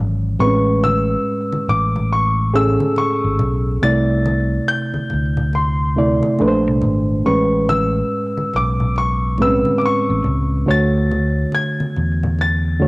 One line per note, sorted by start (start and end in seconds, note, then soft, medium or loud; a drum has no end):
0.00 0.34 G#1 loud
0.00 0.41 E3 medium
0.00 0.40 F#3 soft
0.00 0.40 C#4 medium
0.00 0.40 C#5 medium
0.00 0.40 D5 medium
0.39 1.14 A1 loud
0.39 2.03 A2 medium
0.39 2.04 G#3 medium
0.39 0.48 C4 medium
0.39 2.05 B4 medium
0.39 0.84 C#6 medium
0.39 muted conga soft
0.47 2.07 C#4 medium
0.84 1.64 E6 medium
0.84 high conga medium
1.52 high conga medium
1.68 2.76 A1 medium
1.68 2.12 D6 medium
1.68 muted conga soft
1.68 low conga medium
1.96 low conga medium
2.12 2.56 C#6 medium
2.53 3.77 A2 medium
2.53 3.77 C#4 medium
2.53 3.77 G#4 medium
2.53 3.78 A4 medium
2.53 2.65 E6 loud
2.80 high conga medium
2.96 3.85 C#6 medium
2.96 muted conga soft
3.24 3.38 G#1 loud
3.39 3.77 B1 loud
3.39 muted conga soft
3.39 low conga medium
3.82 4.58 C2 loud
3.82 5.46 C3 medium
3.82 5.47 A3 medium
3.82 5.47 E4 medium
3.82 5.48 D5 medium
3.82 4.71 A6 loud
4.26 muted conga soft
4.26 high conga medium
4.68 5.56 G6 loud
4.94 muted fingered electric bass stroke soft
4.94 high conga medium
5.10 6.20 D2 medium
5.10 muted conga soft
5.10 low conga medium
5.37 low conga medium
5.53 6.79 C6 medium
5.53 muted conga soft
5.96 6.39 C3 medium
5.96 6.39 A3 medium
5.96 6.40 E4 medium
5.96 6.40 D5 medium
6.23 high conga medium
6.39 6.67 A#1 loud
6.39 7.21 A#2 medium
6.39 7.22 A3 medium
6.39 7.22 D4 medium
6.39 6.48 B4 medium
6.39 muted conga soft
6.48 7.26 C5 medium
6.67 6.81 C2 medium
6.82 7.20 G#1 medium
6.82 muted conga soft
6.82 low conga medium
7.25 8.01 A1 loud
7.25 8.89 A2 medium
7.25 8.90 G#3 medium
7.25 8.90 C#4 medium
7.25 8.90 B4 medium
7.25 7.65 C#6 medium
7.69 8.50 E6 loud
7.69 muted conga soft
7.69 high conga medium
8.37 high conga medium
8.54 9.62 B1 medium
8.54 8.99 D6 medium
8.54 muted conga soft
8.54 low conga medium
8.80 low conga medium
8.96 9.37 C#6 medium
8.96 muted conga soft
9.38 10.62 A2 medium
9.38 10.63 G#3 medium
9.38 9.48 C4 medium
9.38 10.64 B4 medium
9.38 muted conga soft
9.42 9.50 E6 medium
9.47 10.66 C#4 medium
9.65 high conga medium
9.78 9.83 D6 medium
9.78 muted conga soft
9.86 10.72 C#6 loud
10.10 10.23 A1 loud
10.24 10.63 C#2 loud
10.24 low conga medium
10.66 11.44 D2 loud
10.66 12.31 D3 medium
10.66 12.32 A3 medium
10.66 12.32 F#4 medium
10.66 12.32 C#5 medium
10.71 11.57 A6 loud
11.11 high conga medium
11.52 12.42 G#6 medium
11.52 muted conga soft
11.80 high conga medium
11.96 12.88 E2 medium
11.96 low conga medium
12.23 low conga medium
12.39 12.88 A6 medium
12.39 muted conga soft
12.80 12.88 D3 medium
12.80 12.88 A3 medium
12.80 12.88 F#4 medium
12.80 12.88 C#5 medium